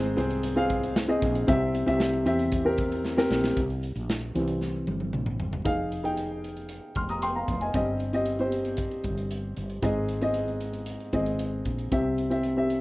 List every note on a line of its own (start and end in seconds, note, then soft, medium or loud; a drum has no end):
0.00 0.15 G#1 medium
0.00 0.13 G#2 medium
0.00 0.17 C4 medium
0.00 0.17 G#4 medium
0.00 0.15 C5 medium
0.00 1.09 D#5 medium
0.05 closed hi-hat soft
0.17 1.18 C2 medium
0.17 0.53 C4 medium
0.17 0.54 G#4 medium
0.17 0.54 C5 medium
0.17 closed hi-hat medium
0.30 closed hi-hat medium
0.43 closed hi-hat medium
0.56 1.05 C4 medium
0.56 1.05 G#4 medium
0.56 1.05 F5 medium
0.56 closed hi-hat soft
0.70 kick medium
0.70 closed hi-hat medium
0.83 closed hi-hat medium
0.96 snare loud
1.08 1.45 C4 medium
1.08 1.45 G#4 medium
1.08 1.45 D#5 medium
1.22 1.46 A#1 medium
1.22 kick medium
1.22 closed hi-hat medium
1.35 closed hi-hat medium
1.47 1.85 C2 loud
1.47 2.22 C3 medium
1.47 1.84 C4 medium
1.47 1.84 G4 medium
1.47 1.84 E5 loud
1.47 kick loud
1.47 closed hi-hat medium
1.75 closed hi-hat medium
1.86 2.24 C2 loud
1.86 2.23 C4 medium
1.86 2.23 G4 medium
1.86 2.24 E5 medium
1.86 closed hi-hat soft
2.00 snare medium
2.13 closed hi-hat soft
2.25 3.27 E2 medium
2.25 2.62 C4 medium
2.25 2.62 G4 medium
2.25 2.63 E5 medium
2.25 closed hi-hat medium
2.39 closed hi-hat medium
2.52 kick medium
2.52 closed hi-hat medium
2.65 3.13 C4 medium
2.65 3.14 G4 medium
2.65 3.14 A#4 medium
2.78 kick medium
2.78 closed hi-hat medium
2.92 closed hi-hat medium
3.05 snare medium
3.17 3.54 C4 medium
3.17 3.54 G4 medium
3.17 3.54 A#4 medium
3.17 snare medium
3.30 3.55 A#1 medium
3.30 snare medium
3.44 snare medium
3.57 3.93 C2 medium
3.57 kick medium
3.57 closed hi-hat medium
3.70 closed hi-hat soft
3.83 closed hi-hat medium
3.96 4.32 A#1 medium
3.96 closed hi-hat soft
4.10 snare loud
4.34 4.84 C2 medium
4.34 5.09 E3 soft
4.34 5.09 G3 soft
4.34 5.10 C4 soft
4.34 closed hi-hat medium
4.48 closed hi-hat medium
4.61 snare soft
4.87 5.12 G1 medium
4.87 high tom medium
5.00 high tom medium
5.13 5.38 A#1 medium
5.13 mid tom medium
5.26 mid tom medium
5.39 5.64 G1 medium
5.39 floor tom medium
5.53 floor tom medium
5.65 6.79 F1 medium
5.65 6.01 D#4 medium
5.65 6.02 G#4 medium
5.65 6.02 F5 medium
5.65 kick medium
5.65 closed hi-hat medium
5.92 closed hi-hat medium
6.04 6.89 D#4 medium
6.04 6.89 G#4 medium
6.04 6.89 G5 medium
6.04 closed hi-hat soft
6.17 closed hi-hat medium
6.44 closed hi-hat medium
6.57 closed hi-hat soft
6.69 closed hi-hat medium
6.95 7.44 F1 medium
6.95 7.09 C6 soft
6.95 7.09 F6 soft
6.95 kick medium
6.95 closed hi-hat medium
7.09 7.22 A#5 soft
7.09 7.22 D#6 medium
7.09 closed hi-hat soft
7.22 7.35 G5 medium
7.22 7.35 C6 medium
7.22 closed hi-hat medium
7.35 7.60 F5 soft
7.35 7.60 A#5 medium
7.48 7.72 F1 medium
7.48 kick medium
7.48 closed hi-hat medium
7.61 7.74 D#5 soft
7.61 7.86 G#5 medium
7.61 closed hi-hat soft
7.74 8.88 G1 medium
7.74 8.49 G2 medium
7.74 8.10 C4 medium
7.74 8.11 G4 medium
7.74 8.11 D#5 medium
7.74 kick medium
7.74 closed hi-hat medium
8.00 closed hi-hat soft
8.13 8.37 C4 medium
8.13 8.38 G4 medium
8.13 8.38 D#5 medium
8.13 closed hi-hat soft
8.26 closed hi-hat medium
8.39 9.36 C4 medium
8.39 9.36 G4 medium
8.39 9.37 C5 medium
8.39 closed hi-hat soft
8.52 closed hi-hat medium
8.65 closed hi-hat soft
8.77 kick medium
8.77 closed hi-hat medium
8.91 closed hi-hat soft
9.04 9.53 G1 medium
9.04 kick medium
9.04 closed hi-hat medium
9.18 closed hi-hat soft
9.31 closed hi-hat medium
9.57 9.81 G1 medium
9.57 closed hi-hat medium
9.70 closed hi-hat soft
9.82 10.96 G#1 medium
9.82 10.57 G#2 medium
9.82 10.19 C4 medium
9.82 10.19 G#4 medium
9.82 10.20 D#5 medium
9.82 kick medium
9.82 closed hi-hat medium
10.09 closed hi-hat medium
10.21 11.06 C4 medium
10.21 11.07 G#4 medium
10.21 11.07 D#5 medium
10.21 closed hi-hat soft
10.34 closed hi-hat medium
10.48 closed hi-hat soft
10.61 closed hi-hat medium
10.73 closed hi-hat soft
10.86 closed hi-hat medium
11.00 closed hi-hat soft
11.13 11.62 G#1 medium
11.13 11.86 C4 medium
11.13 11.86 G#4 medium
11.13 11.86 D#5 medium
11.13 kick medium
11.13 closed hi-hat medium
11.26 closed hi-hat medium
11.39 closed hi-hat medium
11.65 11.90 A#1 medium
11.65 kick medium
11.65 closed hi-hat medium
11.79 closed hi-hat soft
11.91 12.81 C2 medium
11.91 12.66 C3 medium
11.91 12.28 C4 medium
11.91 12.28 G4 medium
11.91 12.29 E5 medium
11.91 kick medium
11.91 closed hi-hat medium
12.18 closed hi-hat medium
12.30 12.55 C4 medium
12.30 12.55 G4 medium
12.30 12.56 E5 medium
12.30 closed hi-hat soft
12.43 closed hi-hat medium
12.57 12.81 C4 medium
12.57 12.81 G4 medium
12.57 12.81 E5 medium
12.70 closed hi-hat medium